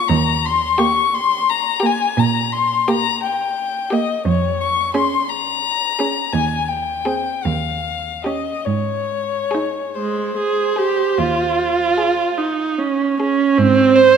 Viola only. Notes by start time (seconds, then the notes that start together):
0.79 A#3
1.83 A#3
2.88 A#3
3.92 A#3
4.95 C#4
6.00 C#4
7.06 C4
8.26 C#4
9.54 D#4
9.97 G#3
10.37 G#4
10.78 G4
11.18 F4
12.38 D#4
12.78 C#4
13.20 C#4
13.58 C4
13.95 C5